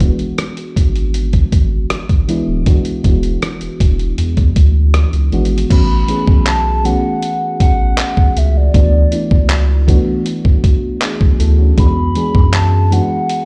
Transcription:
0.00 0.12 E1 loud
0.00 2.28 E3 medium
0.00 2.29 G#3 medium
0.00 2.29 B3 medium
0.00 0.02 D4 medium
0.00 0.93 D4 medium
0.00 0.02 F#4 medium
0.00 0.94 F#4 medium
0.00 kick medium
0.00 closed hi-hat medium
0.19 0.27 G#1 soft
0.19 closed hi-hat soft
0.38 cross-stick loud
0.38 closed hi-hat medium
0.57 closed hi-hat soft
0.76 1.43 G#1 medium
0.76 kick medium
0.76 closed hi-hat medium
0.96 closed hi-hat soft
1.14 closed hi-hat medium
1.33 kick medium
1.33 closed hi-hat soft
1.52 1.86 G#1 medium
1.52 kick medium
1.52 closed hi-hat medium
1.90 1.98 G#1 soft
1.90 cross-stick loud
1.90 closed hi-hat medium
2.09 2.26 G#1 medium
2.09 kick medium
2.09 closed hi-hat soft
2.28 2.51 E3 medium
2.28 2.52 G#3 medium
2.28 2.52 B3 medium
2.28 2.52 D4 medium
2.28 2.52 E4 loud
2.28 closed hi-hat medium
2.48 2.64 D1 medium
2.66 2.89 E3 medium
2.66 2.89 G#3 medium
2.66 2.90 B3 medium
2.66 2.90 D4 medium
2.66 2.90 F#4 medium
2.66 kick loud
2.66 closed hi-hat medium
2.85 closed hi-hat medium
3.03 3.38 E1 loud
3.03 3.96 E3 medium
3.03 3.96 G#3 medium
3.03 3.96 B3 medium
3.03 3.97 D4 medium
3.03 3.97 F#4 medium
3.03 kick medium
3.03 closed hi-hat medium
3.23 closed hi-hat soft
3.42 cross-stick loud
3.42 closed hi-hat medium
3.61 3.69 E1 soft
3.61 closed hi-hat soft
3.80 4.14 E1 loud
3.80 kick medium
3.80 closed hi-hat medium
3.99 closed hi-hat soft
4.18 4.51 E2 loud
4.18 closed hi-hat medium
4.37 kick medium
4.37 closed hi-hat soft
4.56 5.06 D2 loud
4.56 kick medium
4.56 closed hi-hat medium
4.94 cross-stick loud
4.94 closed hi-hat medium
5.13 5.30 C#2 medium
5.13 closed hi-hat soft
5.32 5.66 G#1 medium
5.32 5.55 E3 medium
5.32 5.55 G#3 medium
5.32 5.56 B3 medium
5.32 5.56 D4 medium
5.32 5.56 F#4 medium
5.32 closed hi-hat soft
5.45 closed hi-hat medium
5.58 closed hi-hat medium
5.70 6.04 A1 loud
5.70 5.93 E3 medium
5.70 5.93 A3 medium
5.70 5.93 B3 medium
5.70 5.94 C#4 medium
5.70 5.94 F#4 medium
5.70 6.49 B5 loud
5.70 kick loud
5.70 closed hi-hat medium
5.70 crash medium
6.08 6.54 E3 medium
6.08 6.54 A3 medium
6.08 6.54 B3 medium
6.08 6.55 C#4 medium
6.08 6.55 G#4 medium
6.08 closed hi-hat medium
6.27 6.94 B1 loud
6.27 kick loud
6.46 6.87 A5 loud
6.46 clap loud
6.46 closed hi-hat medium
6.84 7.76 E3 medium
6.84 7.76 A3 medium
6.84 7.77 B3 medium
6.84 7.77 C#4 medium
6.84 7.77 F#4 medium
6.84 7.61 F#5 loud
6.84 closed hi-hat medium
7.22 closed hi-hat medium
7.60 7.93 A1 medium
7.60 8.40 F#5 loud
7.60 kick medium
7.60 closed hi-hat medium
7.98 clap loud
7.98 closed hi-hat medium
8.17 kick medium
8.37 8.70 C#2 loud
8.37 8.59 E5 medium
8.37 closed hi-hat medium
8.57 10.08 D5 medium
8.74 9.07 D2 loud
8.74 8.97 E3 medium
8.74 8.97 A3 medium
8.74 8.97 B3 medium
8.74 8.98 D4 medium
8.74 8.98 F#4 medium
8.74 kick loud
8.74 closed hi-hat medium
9.11 9.58 E3 medium
9.11 9.58 A3 medium
9.11 9.58 B3 medium
9.11 9.59 D4 medium
9.11 9.59 E4 medium
9.11 closed hi-hat medium
9.31 9.97 C#2 medium
9.31 kick loud
9.49 clap loud
9.49 closed hi-hat medium
9.87 10.80 E3 medium
9.87 10.80 A3 medium
9.87 10.80 B3 medium
9.87 10.80 D4 medium
9.87 10.81 F#4 loud
9.87 kick medium
9.87 closed hi-hat medium
10.26 closed hi-hat medium
10.45 kick medium
10.64 kick medium
10.64 closed hi-hat medium
11.02 11.38 D4 medium
11.02 11.38 G#4 medium
11.02 clap loud
11.02 closed hi-hat medium
11.21 11.37 B1 medium
11.21 kick medium
11.40 11.73 D2 loud
11.40 11.58 E4 medium
11.40 11.58 A4 medium
11.40 closed hi-hat medium
11.59 11.95 C#4 medium
11.59 11.77 F#4 medium
11.77 12.11 E2 loud
11.77 12.00 E3 medium
11.77 12.01 G#3 medium
11.77 12.01 B3 medium
11.77 12.01 D4 medium
11.77 12.01 F#4 medium
11.77 12.56 B5 loud
11.77 kick loud
11.77 closed hi-hat medium
12.15 12.61 E3 medium
12.15 12.62 G#3 medium
12.15 12.62 B3 medium
12.15 12.62 D4 medium
12.15 12.62 G#4 medium
12.15 closed hi-hat medium
12.35 13.01 F#2 medium
12.35 kick loud
12.53 12.94 A5 loud
12.53 clap loud
12.53 closed hi-hat medium
12.91 13.45 E3 medium
12.91 13.45 G#3 medium
12.91 13.45 B3 medium
12.91 13.45 D4 medium
12.91 13.45 F#4 medium
12.91 13.45 F#5 loud
12.91 closed hi-hat medium
13.29 closed hi-hat medium

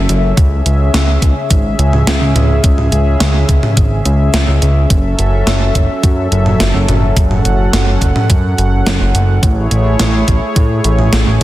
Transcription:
0.00 0.34 F#3 medium
0.00 4.86 C#4 medium
0.00 0.34 A4 medium
0.00 4.86 E5 medium
0.09 0.33 F#1 loud
0.09 closed hi-hat medium
0.37 0.62 C#2 loud
0.37 4.87 C#3 medium
0.37 4.86 G#4 medium
0.37 kick loud
0.37 closed hi-hat medium
0.66 0.90 C#2 medium
0.66 closed hi-hat medium
0.94 1.18 C#2 medium
0.94 snare loud
0.94 closed hi-hat loud
1.22 1.34 C#2 medium
1.22 kick medium
1.22 closed hi-hat medium
1.50 1.75 G#1 medium
1.50 kick loud
1.50 closed hi-hat medium
1.79 2.03 C#2 medium
1.79 closed hi-hat medium
1.93 mid tom medium
2.07 2.19 C#2 medium
2.07 snare loud
2.07 closed hi-hat loud
2.21 2.33 C#2 medium
2.35 2.60 C#2 loud
2.35 closed hi-hat medium
2.35 mid tom medium
2.64 2.88 C#2 loud
2.64 kick loud
2.64 closed hi-hat medium
2.78 mid tom medium
2.92 3.16 C#2 medium
2.92 closed hi-hat medium
3.20 3.45 C#2 medium
3.20 snare loud
3.20 closed hi-hat medium
3.49 3.61 C#2 loud
3.49 kick medium
3.49 closed hi-hat medium
3.63 mid tom medium
3.77 4.01 G#1 medium
3.77 kick loud
3.77 closed hi-hat medium
4.05 4.30 C#2 medium
4.05 closed hi-hat medium
4.34 4.46 C#2 medium
4.34 snare loud
4.34 closed hi-hat medium
4.48 4.60 C#2 medium
4.62 4.86 C#2 loud
4.62 closed hi-hat medium
4.90 5.15 F#1 loud
4.90 9.39 F#3 medium
4.90 9.39 C#4 medium
4.90 9.39 A4 medium
4.90 7.15 E5 medium
4.90 kick loud
4.90 closed hi-hat medium
5.19 5.43 F#1 medium
5.19 closed hi-hat medium
5.47 5.71 F#1 medium
5.47 snare loud
5.47 closed hi-hat medium
5.75 5.87 F#1 loud
5.75 kick medium
5.75 closed hi-hat medium
6.03 6.28 F#2 medium
6.03 kick loud
6.03 closed hi-hat medium
6.32 6.56 F#1 medium
6.32 closed hi-hat medium
6.46 mid tom medium
6.60 6.72 F#1 loud
6.60 snare loud
6.60 closed hi-hat medium
6.74 6.86 F#1 medium
6.88 7.13 F#1 loud
6.88 closed hi-hat medium
6.88 mid tom medium
7.17 7.41 F#1 loud
7.17 9.41 F#5 medium
7.17 kick loud
7.17 closed hi-hat medium
7.31 mid tom medium
7.45 7.69 F#1 medium
7.45 closed hi-hat medium
7.73 7.98 F#1 medium
7.73 snare loud
7.73 closed hi-hat medium
8.01 8.14 F#1 loud
8.01 kick medium
8.01 closed hi-hat medium
8.16 mid tom medium
8.30 8.54 F#2 medium
8.30 kick loud
8.30 closed hi-hat medium
8.58 8.82 F#1 loud
8.58 closed hi-hat medium
8.86 8.99 F#1 loud
8.86 snare loud
8.86 closed hi-hat medium
9.01 9.13 F#1 medium
9.15 9.39 F#1 loud
9.15 closed hi-hat medium
9.43 9.67 A1 loud
9.43 11.43 A3 medium
9.43 11.43 E4 medium
9.43 11.43 G#4 medium
9.43 11.43 C#5 medium
9.43 kick loud
9.43 closed hi-hat medium
9.71 9.96 A1 medium
9.71 closed hi-hat medium
9.99 10.24 A1 loud
9.99 snare loud
9.99 closed hi-hat medium
10.28 10.40 A1 loud
10.28 kick medium
10.28 closed hi-hat medium
10.56 10.81 A2 loud
10.56 kick loud
10.56 closed hi-hat medium
10.84 11.09 A1 loud
10.84 closed hi-hat medium
10.99 mid tom medium
11.13 11.25 A1 medium
11.13 snare loud
11.13 closed hi-hat medium
11.27 11.39 A1 medium

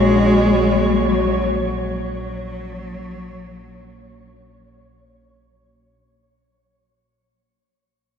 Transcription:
0.00 6.01 A#1 medium
0.00 1.10 G#3 loud
0.00 5.90 A#3 medium
0.00 5.91 F#4 medium
0.00 5.91 C#5 medium
0.00 5.92 C#5 medium
1.09 1.62 F#3 medium
1.63 4.80 F#3 medium

